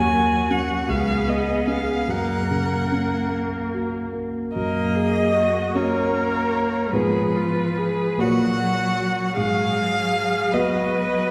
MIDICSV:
0, 0, Header, 1, 5, 480
1, 0, Start_track
1, 0, Key_signature, 6, "major"
1, 0, Tempo, 772201
1, 790, Tempo, 820793
1, 1268, Time_signature, 6, 3, 24, 8
1, 2710, Tempo, 794702
1, 4150, Tempo, 831025
1, 5110, Tempo, 770218
1, 6797, End_track
2, 0, Start_track
2, 0, Title_t, "Violin"
2, 0, Program_c, 0, 40
2, 0, Note_on_c, 0, 80, 68
2, 315, Note_on_c, 0, 78, 51
2, 324, Note_off_c, 0, 80, 0
2, 555, Note_on_c, 0, 77, 52
2, 564, Note_off_c, 0, 78, 0
2, 801, Note_on_c, 0, 75, 46
2, 810, Note_off_c, 0, 77, 0
2, 1029, Note_off_c, 0, 75, 0
2, 1032, Note_on_c, 0, 77, 51
2, 1275, Note_on_c, 0, 78, 55
2, 1284, Note_off_c, 0, 77, 0
2, 1997, Note_off_c, 0, 78, 0
2, 2712, Note_on_c, 0, 75, 66
2, 3433, Note_on_c, 0, 73, 52
2, 3442, Note_off_c, 0, 75, 0
2, 4150, Note_off_c, 0, 73, 0
2, 4157, Note_on_c, 0, 71, 62
2, 4881, Note_on_c, 0, 78, 56
2, 4889, Note_off_c, 0, 71, 0
2, 5584, Note_off_c, 0, 78, 0
2, 5588, Note_on_c, 0, 77, 77
2, 6316, Note_on_c, 0, 75, 57
2, 6326, Note_off_c, 0, 77, 0
2, 6797, Note_off_c, 0, 75, 0
2, 6797, End_track
3, 0, Start_track
3, 0, Title_t, "Viola"
3, 0, Program_c, 1, 41
3, 0, Note_on_c, 1, 66, 51
3, 546, Note_on_c, 1, 68, 51
3, 555, Note_off_c, 1, 66, 0
3, 1271, Note_on_c, 1, 70, 42
3, 1280, Note_off_c, 1, 68, 0
3, 2354, Note_off_c, 1, 70, 0
3, 2704, Note_on_c, 1, 70, 46
3, 2949, Note_on_c, 1, 68, 48
3, 2958, Note_off_c, 1, 70, 0
3, 3188, Note_on_c, 1, 66, 48
3, 3197, Note_off_c, 1, 68, 0
3, 3440, Note_on_c, 1, 70, 59
3, 3449, Note_off_c, 1, 66, 0
3, 4151, Note_off_c, 1, 70, 0
3, 4154, Note_on_c, 1, 68, 43
3, 4392, Note_on_c, 1, 65, 41
3, 4401, Note_off_c, 1, 68, 0
3, 4635, Note_on_c, 1, 68, 49
3, 4643, Note_off_c, 1, 65, 0
3, 4875, Note_on_c, 1, 66, 57
3, 4883, Note_off_c, 1, 68, 0
3, 5583, Note_off_c, 1, 66, 0
3, 5587, Note_on_c, 1, 68, 49
3, 6307, Note_on_c, 1, 71, 58
3, 6316, Note_off_c, 1, 68, 0
3, 6797, Note_off_c, 1, 71, 0
3, 6797, End_track
4, 0, Start_track
4, 0, Title_t, "Grand piano"
4, 0, Program_c, 2, 0
4, 0, Control_c, 2, 64, 127
4, 0, Note_on_c, 2, 39, 49
4, 78, Note_on_c, 2, 58, 38
4, 310, Note_on_c, 2, 61, 34
4, 312, Note_on_c, 2, 66, 39
4, 452, Note_off_c, 2, 58, 0
4, 523, Note_off_c, 2, 61, 0
4, 524, Note_off_c, 2, 66, 0
4, 525, Note_off_c, 2, 39, 0
4, 549, Note_on_c, 2, 37, 51
4, 556, Control_c, 2, 64, 0
4, 678, Control_c, 2, 64, 127
4, 792, Note_on_c, 2, 59, 34
4, 1026, Note_on_c, 2, 61, 32
4, 1029, Note_on_c, 2, 68, 36
4, 1172, Note_off_c, 2, 59, 0
4, 1244, Note_off_c, 2, 61, 0
4, 1245, Note_off_c, 2, 68, 0
4, 1249, Note_off_c, 2, 37, 0
4, 1263, Note_on_c, 2, 42, 41
4, 1280, Control_c, 2, 64, 0
4, 1391, Control_c, 2, 64, 127
4, 1512, Note_on_c, 2, 49, 34
4, 1754, Note_on_c, 2, 61, 35
4, 1898, Note_off_c, 2, 49, 0
4, 1988, Note_on_c, 2, 58, 34
4, 2137, Note_off_c, 2, 61, 0
4, 2235, Note_on_c, 2, 66, 30
4, 2374, Note_off_c, 2, 58, 0
4, 2461, Note_on_c, 2, 58, 34
4, 2616, Note_off_c, 2, 66, 0
4, 2684, Note_off_c, 2, 42, 0
4, 2704, Note_off_c, 2, 58, 0
4, 2712, Note_on_c, 2, 42, 48
4, 2721, Control_c, 2, 64, 0
4, 2818, Control_c, 2, 64, 127
4, 3411, Note_off_c, 2, 42, 0
4, 3424, Note_on_c, 2, 58, 38
4, 3430, Note_on_c, 2, 66, 39
4, 3431, Note_on_c, 2, 61, 35
4, 4121, Note_off_c, 2, 58, 0
4, 4124, Note_off_c, 2, 66, 0
4, 4125, Note_off_c, 2, 61, 0
4, 4145, Note_on_c, 2, 44, 47
4, 4146, Note_on_c, 2, 65, 37
4, 4147, Note_on_c, 2, 59, 33
4, 4151, Note_on_c, 2, 71, 33
4, 4162, Control_c, 2, 64, 0
4, 4277, Control_c, 2, 64, 127
4, 4853, Note_off_c, 2, 44, 0
4, 4853, Note_off_c, 2, 59, 0
4, 4853, Note_off_c, 2, 65, 0
4, 4855, Note_off_c, 2, 71, 0
4, 4864, Note_on_c, 2, 46, 50
4, 4866, Note_on_c, 2, 58, 38
4, 4872, Note_on_c, 2, 73, 35
4, 4874, Note_on_c, 2, 66, 38
4, 4891, Control_c, 2, 64, 0
4, 4996, Control_c, 2, 64, 127
4, 5562, Note_off_c, 2, 58, 0
4, 5564, Note_off_c, 2, 46, 0
4, 5565, Note_off_c, 2, 73, 0
4, 5566, Note_off_c, 2, 66, 0
4, 5589, Note_on_c, 2, 44, 47
4, 5605, Control_c, 2, 64, 0
4, 5725, Control_c, 2, 64, 127
4, 6289, Note_off_c, 2, 44, 0
4, 6313, Note_on_c, 2, 66, 40
4, 6316, Note_on_c, 2, 71, 40
4, 6318, Note_on_c, 2, 59, 37
4, 6797, Note_off_c, 2, 59, 0
4, 6797, Note_off_c, 2, 66, 0
4, 6797, Note_off_c, 2, 71, 0
4, 6797, End_track
5, 0, Start_track
5, 0, Title_t, "Cello"
5, 0, Program_c, 3, 42
5, 0, Note_on_c, 3, 54, 50
5, 559, Note_on_c, 3, 59, 45
5, 568, Note_off_c, 3, 54, 0
5, 1267, Note_on_c, 3, 58, 42
5, 1276, Note_off_c, 3, 59, 0
5, 2582, Note_off_c, 3, 58, 0
5, 2709, Note_on_c, 3, 58, 46
5, 3407, Note_off_c, 3, 58, 0
5, 3433, Note_on_c, 3, 58, 44
5, 4146, Note_on_c, 3, 53, 48
5, 4155, Note_off_c, 3, 58, 0
5, 4880, Note_on_c, 3, 54, 46
5, 4888, Note_off_c, 3, 53, 0
5, 5591, Note_off_c, 3, 54, 0
5, 5595, Note_on_c, 3, 54, 51
5, 6299, Note_off_c, 3, 54, 0
5, 6313, Note_on_c, 3, 54, 51
5, 6797, Note_off_c, 3, 54, 0
5, 6797, End_track
0, 0, End_of_file